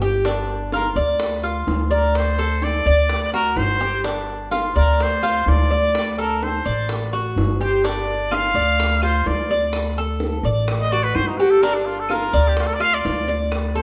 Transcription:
0.00 0.90 G1 medium
0.00 0.25 G4 medium
0.00 high bongo soft
0.25 0.71 D4 medium
0.25 high bongo medium
0.49 0.61 G4 soft
0.49 high bongo soft
0.72 0.96 F4 medium
0.72 0.89 A#4 medium
0.72 high bongo medium
0.96 1.63 D2 medium
0.96 1.42 D5 medium
1.20 high bongo medium
1.43 1.90 F4 medium
1.43 high bongo soft
1.67 2.80 D2 medium
1.67 high bongo soft
1.67 low bongo medium
1.91 2.18 A#4 medium
1.91 2.37 D5 medium
1.91 high bongo soft
2.15 2.65 C5 medium
2.15 high bongo medium
2.38 2.85 A4 medium
2.38 high bongo soft
2.62 3.33 D5 loud
2.62 high bongo medium
2.86 3.53 D2 medium
2.86 3.32 D5 medium
3.09 high bongo medium
3.32 3.80 F#4 medium
3.32 3.59 A#4 medium
3.32 high bongo soft
3.56 4.69 G1 medium
3.56 4.05 C5 medium
3.56 high bongo soft
3.56 low bongo medium
3.80 4.04 G4 medium
3.80 high bongo soft
4.04 4.50 D4 medium
4.04 high bongo medium
4.29 high bongo soft
4.51 4.75 F4 medium
4.51 high bongo medium
4.76 5.43 D2 loud
4.76 5.04 A#4 medium
4.76 5.22 D5 medium
5.00 5.50 C5 medium
5.00 high bongo medium
5.23 5.69 F4 medium
5.23 high bongo soft
5.46 6.59 D2 medium
5.46 6.18 D5 loud
5.46 high bongo soft
5.46 low bongo medium
5.71 6.17 D5 medium
5.71 high bongo soft
5.95 high bongo medium
6.18 6.64 A4 medium
6.18 6.45 A#4 medium
6.18 high bongo soft
6.43 6.90 C5 medium
6.43 high bongo medium
6.65 7.33 A1 medium
6.65 7.11 D5 medium
6.89 high bongo medium
7.13 7.59 F#4 medium
7.13 high bongo soft
7.36 8.48 G1 medium
7.36 high bongo soft
7.36 low bongo medium
7.61 7.83 G4 medium
7.61 7.88 C5 medium
7.61 high bongo soft
7.84 8.30 D4 medium
7.84 8.36 D5 medium
7.84 high bongo medium
8.08 high bongo soft
8.31 8.54 F4 medium
8.31 9.03 F5 loud
8.31 high bongo medium
8.31 claves medium
8.54 9.22 D2 medium
8.54 9.01 D5 medium
8.80 high bongo medium
9.02 9.48 F4 medium
9.02 9.29 C5 medium
9.02 high bongo soft
9.02 claves medium
9.26 10.38 D2 medium
9.26 9.74 D5 medium
9.26 high bongo soft
9.26 low bongo medium
9.50 9.96 D5 medium
9.50 high bongo soft
9.73 high bongo medium
9.73 claves medium
9.96 10.43 A4 medium
9.96 high bongo soft
10.20 high bongo medium
10.43 11.11 A1 medium
10.43 10.90 D5 medium
10.68 high bongo medium
10.68 claves medium
10.80 10.93 D#5 medium
10.91 11.38 F#4 medium
10.91 11.05 D5 loud
10.91 high bongo soft
11.03 11.17 B4 medium
11.15 12.27 G1 medium
11.15 11.29 C5 loud
11.15 high bongo soft
11.15 low bongo medium
11.15 claves medium
11.28 11.39 D#4 medium
11.37 11.52 F#4 medium
11.37 11.62 G4 medium
11.37 high bongo soft
11.50 11.64 A4 medium
11.62 12.09 D4 medium
11.62 11.76 A#4 loud
11.62 high bongo medium
11.75 11.87 D4 medium
11.86 12.01 F4 medium
11.86 high bongo soft
12.00 12.14 A4 medium
12.09 12.33 F4 medium
12.09 12.49 A#4 loud
12.09 high bongo medium
12.09 claves medium
12.33 13.00 D2 loud
12.33 12.79 D5 medium
12.48 12.62 G4 medium
12.57 12.68 F4 medium
12.57 high bongo medium
12.67 12.76 A4 medium
12.74 12.83 D5 medium
12.80 13.26 F4 medium
12.80 12.96 F5 loud
12.80 high bongo soft
12.80 claves medium
12.94 13.41 D5 medium
13.05 13.82 D2 medium
13.05 high bongo soft
13.05 low bongo medium
13.28 13.74 D5 medium
13.28 high bongo soft
13.52 high bongo medium
13.52 claves medium
13.75 13.82 A4 medium
13.75 13.82 C5 medium
13.75 high bongo soft

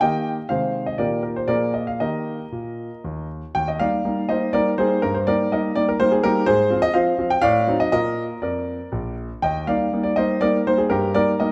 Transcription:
0.01 0.36 D#3 soft
0.01 0.37 A#3 soft
0.01 0.37 G4 soft
0.01 0.47 D#5 medium
0.01 0.30 G5 medium
0.49 0.98 C3 soft
0.49 0.95 D#3 soft
0.49 0.95 G#3 soft
0.49 0.96 G#4 soft
0.49 0.84 C5 medium
0.49 0.83 F5 medium
0.86 0.99 D#5 medium
0.98 1.47 A#2 soft
0.98 1.45 D#3 soft
0.98 1.46 A#3 soft
0.98 1.46 G4 soft
0.98 1.21 A#4 soft
0.98 1.21 D5 medium
1.23 1.36 A#4 medium
1.36 1.49 C5 medium
1.48 1.99 A#2 medium
1.48 1.97 F3 soft
1.48 1.97 A#3 soft
1.48 1.97 G#4 soft
1.48 1.73 A#4 medium
1.48 1.72 D5 medium
1.74 1.88 D#5 medium
1.87 2.01 F5 medium
2.00 2.37 D#3 soft
2.00 2.42 A#3 soft
2.00 2.43 G4 soft
2.00 3.26 A#4 medium
2.00 3.26 D#5 medium
2.52 2.89 A#2 soft
3.05 3.40 D#2 medium
3.55 3.80 D#2 medium
3.55 3.68 G5 medium
3.68 3.81 D#5 medium
3.79 3.98 G3 soft
3.79 3.99 A#3 soft
3.79 3.99 D#4 soft
3.79 4.26 D5 medium
3.79 4.29 F5 medium
4.05 4.23 G3 soft
4.05 4.23 A#3 soft
4.05 4.23 D#4 soft
4.29 4.47 G3 soft
4.29 4.47 A#3 soft
4.29 4.47 D#4 soft
4.29 4.53 C5 medium
4.29 4.54 D#5 medium
4.53 4.71 G3 soft
4.53 4.71 A#3 soft
4.53 4.72 D#4 soft
4.53 4.77 A#4 medium
4.53 4.68 D5 medium
4.78 4.96 G3 soft
4.78 4.96 A#3 soft
4.78 4.96 D#4 medium
4.78 5.02 G#4 medium
4.78 5.00 C5 medium
5.02 5.26 G2 medium
5.02 5.14 A#4 medium
5.14 5.27 C5 medium
5.27 5.45 G3 soft
5.27 5.45 A#3 soft
5.27 5.46 D#4 soft
5.27 5.50 A#4 medium
5.27 5.51 D5 medium
5.52 5.69 G3 soft
5.52 5.70 A#3 soft
5.52 5.70 D#4 soft
5.52 5.75 A#4 medium
5.52 5.74 D#5 medium
5.76 5.93 G3 soft
5.76 5.93 A#3 soft
5.76 5.94 D#4 soft
5.76 5.88 D5 medium
5.89 6.00 A#4 medium
6.00 6.17 G3 medium
6.00 6.17 A#3 medium
6.00 6.17 D#4 medium
6.00 6.11 C5 loud
6.12 6.23 G#4 medium
6.23 6.41 G3 medium
6.23 6.41 A#3 medium
6.23 6.41 D#4 medium
6.23 6.46 G4 medium
6.23 6.45 A#4 medium
6.46 6.70 G#2 medium
6.46 6.80 G#4 medium
6.46 6.78 C5 loud
6.70 6.87 F3 medium
6.70 6.88 C4 soft
6.70 6.88 F4 medium
6.82 6.94 D#5 loud
6.94 7.12 F3 soft
6.94 7.12 C4 medium
6.94 7.12 F4 medium
6.94 7.28 C5 medium
6.94 7.30 F5 medium
7.18 7.36 F3 medium
7.18 7.36 C4 medium
7.18 7.36 F4 medium
7.30 7.43 G5 medium
7.42 7.66 A2 medium
7.42 7.77 D5 medium
7.42 7.76 F5 loud
7.67 7.85 F#3 medium
7.67 7.86 C4 medium
7.67 7.86 D#4 medium
7.80 7.91 D#5 medium
7.92 8.27 A#2 medium
7.92 8.32 A#3 soft
7.92 8.33 F4 soft
7.92 8.39 A#4 medium
7.92 8.22 D#5 loud
8.42 8.78 F2 soft
8.42 9.14 A#4 medium
8.42 9.13 D5 medium
8.92 9.27 A#1 medium
9.42 9.67 D#2 medium
9.42 9.67 D#5 medium
9.42 9.65 G5 medium
9.67 9.85 G3 soft
9.67 9.86 A#3 soft
9.67 9.86 D#4 soft
9.67 10.02 D5 medium
9.67 9.90 F5 medium
9.93 10.11 G3 soft
9.93 10.11 A#3 soft
9.93 10.11 D#4 soft
10.03 10.17 D5 medium
10.16 10.35 G3 soft
10.16 10.35 A#3 soft
10.16 10.35 D#4 soft
10.16 10.40 C5 medium
10.16 10.41 D#5 medium
10.41 10.59 G3 medium
10.41 10.59 A#3 medium
10.41 10.59 D#4 medium
10.41 10.65 A#4 medium
10.41 10.56 D5 medium
10.67 10.84 G3 soft
10.67 10.85 A#3 soft
10.67 10.85 D#4 medium
10.67 10.79 C5 medium
10.78 10.90 G#4 medium
10.90 11.14 G2 medium
10.90 11.13 G4 medium
10.90 11.14 A#4 medium
11.14 11.32 G3 soft
11.14 11.33 A#3 soft
11.14 11.33 D#4 medium
11.14 11.38 A#4 medium
11.14 11.29 D5 medium
11.40 11.52 G3 soft
11.40 11.52 A#3 soft
11.40 11.52 D#4 soft
11.40 11.52 A#4 medium
11.40 11.52 D#5 medium

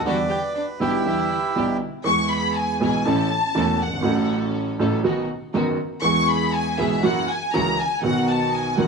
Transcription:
0.05 0.26 E2 medium
0.05 0.26 D3 medium
0.05 0.26 E3 medium
0.05 0.26 G3 medium
0.05 0.27 B3 medium
0.05 0.26 D4 medium
0.05 0.26 E4 medium
0.05 0.27 E4 medium
0.05 0.16 F#4 medium
0.05 0.26 G4 medium
0.05 0.80 B4 medium
0.05 0.53 D5 medium
0.05 0.17 F#5 medium
0.29 0.40 G4 medium
0.29 0.41 G5 medium
0.55 0.66 D4 medium
0.55 0.66 D5 medium
0.80 1.01 B1 medium
0.80 1.01 B2 medium
0.80 1.01 D3 medium
0.80 1.01 G3 medium
0.80 1.01 B3 medium
0.80 1.01 D4 medium
0.80 1.77 E4 medium
0.80 1.01 E4 medium
0.80 1.01 G4 medium
0.80 1.78 G4 medium
0.80 1.77 B4 medium
0.80 1.77 E5 medium
1.05 1.26 E2 medium
1.05 1.26 D3 soft
1.05 1.26 E3 soft
1.05 1.26 G3 soft
1.05 1.26 B3 soft
1.05 1.26 D4 soft
1.05 1.26 E4 soft
1.05 1.27 E4 soft
1.05 1.27 G4 medium
1.55 1.77 B1 medium
1.55 1.77 B2 medium
1.55 1.77 D3 medium
1.55 1.77 G3 medium
1.55 1.77 B3 medium
1.55 1.77 D4 medium
1.55 1.77 E4 medium
1.55 1.77 G4 medium
2.04 2.77 E2 medium
2.04 2.78 E3 medium
2.04 2.77 G#3 medium
2.04 2.78 B3 medium
2.04 2.78 E4 medium
2.04 2.78 G#4 medium
2.04 2.29 C#6 loud
2.30 2.56 B5 medium
2.56 2.81 G#5 medium
2.80 3.02 B1 medium
2.80 3.02 B2 medium
2.80 3.02 E3 medium
2.80 3.02 G#3 medium
2.80 3.02 B3 medium
2.80 3.02 E4 medium
2.80 3.02 G#4 medium
2.80 3.03 G#4 medium
2.80 3.05 G#5 medium
3.05 3.26 A1 medium
3.05 3.27 A2 medium
3.05 3.26 E3 medium
3.05 3.27 A3 medium
3.05 3.27 C#4 medium
3.05 3.27 E4 medium
3.05 3.27 A4 medium
3.05 3.81 A5 medium
3.55 3.76 E1 medium
3.55 3.76 E2 medium
3.55 3.76 E3 medium
3.55 3.76 A3 medium
3.55 3.76 C#4 medium
3.55 3.77 C#4 medium
3.55 3.77 E4 medium
3.55 3.76 A4 medium
3.55 3.77 A4 medium
3.81 4.31 F#5 medium
3.87 3.93 F#1 soft
3.93 3.99 G1 medium
3.98 4.05 G#1 medium
4.02 4.75 A1 medium
4.02 4.75 A2 medium
4.02 4.76 A2 medium
4.02 4.75 F#3 medium
4.02 4.75 A3 medium
4.02 4.76 C#4 medium
4.02 4.76 F#4 medium
4.02 4.76 A4 medium
4.79 5.00 A1 medium
4.79 5.00 A2 medium
4.79 5.00 F#3 medium
4.79 5.00 A3 medium
4.79 5.00 C#4 medium
4.79 5.01 F#4 medium
4.79 5.00 A4 medium
4.79 5.01 A4 medium
5.04 5.25 B1 medium
5.04 5.25 B2 medium
5.04 5.25 D#3 medium
5.04 5.25 F#3 medium
5.04 5.25 B3 medium
5.04 5.25 D#4 medium
5.04 5.25 F#4 medium
5.54 5.75 F#1 medium
5.54 5.75 F#2 medium
5.54 5.75 D#3 medium
5.54 5.75 F#3 medium
5.54 5.75 B3 medium
5.54 5.75 D#4 medium
5.54 5.75 F#4 medium
6.02 6.75 E2 medium
6.02 6.75 E3 medium
6.02 6.75 G#3 medium
6.02 6.75 B3 medium
6.02 6.75 E4 medium
6.02 6.75 G#4 medium
6.02 6.76 G#4 medium
6.02 6.27 C#6 loud
6.29 6.54 B5 medium
6.54 6.79 G#5 medium
6.78 7.00 B1 medium
6.78 7.00 B2 medium
6.78 6.99 E3 medium
6.78 7.00 G#3 medium
6.78 7.00 B3 medium
6.78 7.00 E4 medium
6.78 7.00 G#4 medium
6.78 7.03 E5 medium
7.03 7.24 F#2 medium
7.03 7.24 E3 medium
7.03 7.24 F#3 medium
7.03 7.24 A#3 medium
7.03 7.24 C#4 medium
7.03 7.24 E4 medium
7.03 7.25 F#4 medium
7.03 7.29 F#5 medium
7.29 7.54 G#5 medium
7.53 7.75 C#2 medium
7.53 7.75 C#3 medium
7.53 7.75 E3 medium
7.53 7.74 A#3 medium
7.53 7.75 A#3 medium
7.53 7.75 C#4 medium
7.53 7.74 E4 medium
7.53 7.74 F#4 medium
7.53 7.75 F#4 medium
7.53 7.78 A#5 medium
7.79 8.03 G#5 medium
8.01 8.74 B1 medium
8.01 8.74 B2 medium
8.01 8.73 D#3 medium
8.01 8.74 F#3 medium
8.01 8.75 B3 medium
8.01 8.75 D#4 medium
8.01 8.75 F#4 medium
8.01 8.26 F#5 medium
8.28 8.53 A5 medium
8.53 8.78 G#5 medium
8.76 8.88 F#1 medium
8.76 8.88 F#2 medium
8.76 8.88 D#3 medium
8.76 8.88 F#3 medium
8.76 8.88 B3 medium
8.76 8.88 D#4 medium
8.76 8.88 F#4 medium
8.76 8.88 F#5 medium

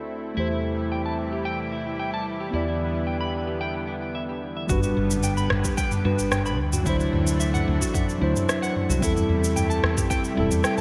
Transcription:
0.00 0.34 D2 medium
0.00 0.33 D3 medium
0.00 2.49 A3 medium
0.00 0.33 C4 medium
0.00 0.35 C4 medium
0.00 0.33 E4 medium
0.00 4.66 E4 medium
0.00 0.34 F#4 medium
0.00 0.35 D5 medium
0.35 2.51 E2 medium
0.35 2.52 C3 medium
0.35 4.66 E3 medium
0.35 4.66 G3 medium
0.35 2.49 A3 medium
0.35 2.50 E4 medium
0.35 0.50 E4 medium
0.35 2.51 G4 medium
0.40 2.52 C5 medium
0.51 0.63 E4 medium
0.92 1.05 G5 medium
1.06 1.17 A5 medium
1.33 1.45 G4 medium
1.45 1.58 G5 medium
1.72 1.85 E4 medium
2.00 2.13 G5 medium
2.14 2.25 A5 medium
2.40 2.53 G4 medium
2.51 4.67 E2 medium
2.51 4.67 D3 medium
2.51 4.65 B3 medium
2.51 4.67 B3 medium
2.51 4.66 E4 medium
2.51 2.66 E4 medium
2.51 4.67 G4 medium
2.56 4.68 D5 medium
2.68 2.79 E4 medium
3.07 3.20 G5 medium
3.21 3.33 B5 medium
3.47 3.60 G4 medium
3.61 3.74 G5 medium
3.87 3.95 E4 medium
4.15 4.23 E5 medium
4.29 4.41 G4 medium
4.57 4.68 E5 medium
4.67 4.92 G1 loud
4.67 6.57 D3 medium
4.67 6.00 G3 loud
4.67 6.57 G3 medium
4.67 6.57 B3 medium
4.67 6.01 D4 medium
4.67 4.82 F#4 loud
4.67 kick loud
4.67 mid tom medium
4.67 shaker medium
4.72 6.03 B4 loud
4.83 4.95 F#4 medium
4.83 shaker soft
4.97 5.47 G1 medium
5.11 mid tom medium
5.11 shaker medium
5.23 5.37 G5 medium
5.23 shaker medium
5.37 5.49 B5 loud
5.37 shaker soft
5.50 5.63 G1 medium
5.50 cross-stick medium
5.50 mid tom medium
5.64 5.77 G4 medium
5.64 kick loud
5.64 shaker medium
5.77 5.91 G5 loud
5.77 kick loud
5.77 shaker medium
5.91 mid tom medium
5.91 shaker soft
6.04 6.17 G2 loud
6.04 6.57 G3 medium
6.04 6.57 D4 medium
6.04 6.17 F#4 medium
6.04 6.58 B4 medium
6.19 6.59 G1 medium
6.19 shaker medium
6.31 6.45 G5 medium
6.31 cross-stick medium
6.31 mid tom medium
6.31 shaker medium
6.46 6.57 B5 loud
6.46 shaker soft
6.59 6.82 D2 medium
6.59 9.00 C3 medium
6.59 9.00 E3 medium
6.59 9.00 A3 medium
6.59 9.00 D4 medium
6.73 6.85 F#4 medium
6.73 mid tom medium
6.73 shaker medium
6.84 7.09 D2 loud
6.84 8.17 F#3 loud
6.84 8.18 D4 medium
6.84 6.99 E4 loud
6.84 8.19 E4 medium
6.84 kick loud
6.84 shaker medium
6.89 8.19 C5 loud
7.00 7.11 E4 medium
7.00 shaker soft
7.13 7.64 D2 medium
7.13 mid tom medium
7.27 shaker medium
7.40 7.53 E5 medium
7.40 shaker medium
7.54 7.66 F#5 loud
7.54 mid tom medium
7.54 shaker soft
7.68 7.79 D2 medium
7.81 7.93 F#4 medium
7.81 kick medium
7.81 shaker medium
7.94 8.07 E5 medium
7.94 kick loud
7.94 mid tom medium
7.94 shaker medium
8.09 shaker soft
8.18 8.33 D2 loud
8.18 8.97 F#3 medium
8.18 8.98 D4 medium
8.18 8.34 E4 medium
8.18 8.99 E4 medium
8.23 9.00 C5 medium
8.36 mid tom medium
8.36 shaker medium
8.49 8.62 E5 medium
8.49 cross-stick medium
8.49 shaker medium
8.62 8.74 F#5 medium
8.62 shaker soft
8.76 mid tom medium
8.89 9.00 C2 medium
8.89 9.02 F#4 medium
8.89 shaker medium
8.99 9.25 E2 loud
8.99 10.81 C3 medium
8.99 10.32 G3 medium
8.99 10.81 G3 medium
8.99 10.81 A3 medium
8.99 10.33 C4 medium
8.99 10.81 E4 medium
8.99 9.15 E4 loud
8.99 10.34 E4 medium
8.99 kick loud
8.99 shaker medium
9.04 10.35 A4 loud
9.16 9.28 E4 medium
9.16 mid tom medium
9.16 shaker soft
9.29 9.80 E2 medium
9.44 shaker medium
9.56 9.69 G5 medium
9.56 mid tom medium
9.56 shaker medium
9.70 9.82 A5 loud
9.70 shaker soft
9.83 9.95 E2 medium
9.83 cross-stick medium
9.97 10.09 G4 medium
9.97 kick loud
9.97 mid tom medium
9.97 shaker medium
10.10 10.23 G5 loud
10.10 kick loud
10.10 shaker medium
10.24 shaker soft
10.35 10.49 E1 loud
10.35 10.81 G3 medium
10.35 10.81 C4 medium
10.35 10.50 E4 medium
10.35 10.81 E4 medium
10.35 mid tom medium
10.40 10.81 A4 medium
10.51 10.62 E2 medium
10.51 shaker medium
10.64 10.77 G5 medium
10.64 cross-stick medium
10.64 shaker medium
10.78 mid tom medium
10.78 shaker soft

